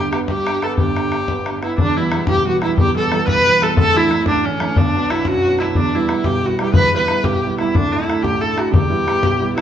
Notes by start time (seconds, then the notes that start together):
Already playing: G1 G2 G4
0.00 D3
0.11 B3 G4, bodhran
0.27 G3 G4, bodhran
0.47 D4, bodhran
0.62 B3 A4, bodhran
0.78 G1 G2 G4, bodhran
0.96 D3, bodhran
1.12 D4, bodhran
1.28 B3, bodhran
1.46 D4, bodhran
1.62 B3 E4, bodhran
1.78 E1 E2 D4, bodhran
1.97 E3 G3 B3 E4
2.12 E3 G3 B3, bodhran
2.27 B1 G4, bodhran
2.37 bodhran
2.45 E3 G3 B3 F#4
2.62 E3 G3 B3 E4, bodhran
2.77 E1 E2 G4, bodhran
2.95 E3 G3 B3 A4
3.11 E3 G3 B3, bodhran
3.28 B1 B4, bodhran
3.38 bodhran
3.45 E3 G3 B3
3.60 E3 G3 B3 A4, bodhran
3.75 D1 D2, bodhran
3.79 A4
3.94 E3 A3 D4 E4
4.09 E3 A3 D4, bodhran
4.25 A1 D4, bodhran
4.36 bodhran
4.44 D3 E3 A3 C#4
4.60 E3 A3 D4, bodhran
4.76 B1 B2 D4, bodhran
4.95 F#3 B3 D4
5.10 F#3 B3 D4 E4, bodhran
5.25 F#2 F#4, bodhran
5.34 bodhran
5.45 F#3 B3 D4
5.59 F#3 B3 D4 E4, bodhran
5.75 E1 E2 D4, bodhran
5.94 G3 B3 E4
6.09 G3 B3 E4, bodhran
6.24 B1 G4, bodhran
6.34 bodhran
6.45 G3 B3 E4 F#4
6.59 G3 B3 E4 G4, bodhran
6.74 E1 E2 B4, bodhran
6.93 G3 B3 E4 B4
7.08 G3 B3 E4, bodhran
7.24 B1 G4, bodhran
7.33 bodhran
7.44 G3 B3 E4
7.58 G3 B3 E4, bodhran
7.75 D1 D2 D4, bodhran
7.92 A3 D4 E4
8.08 A3 D4 E4, bodhran
8.23 A1 G4, bodhran
8.34 bodhran
8.41 A3 D4 E4 A4
8.56 A3 D4 E4 F#4, bodhran
8.71 E1 E2 G4, bodhran
8.89 G3 B3 E4
9.06 G3 B3 E4, bodhran
9.22 B1, bodhran
9.33 bodhran
9.39 G3 B3 E4
9.55 G3 B3 E4, bodhran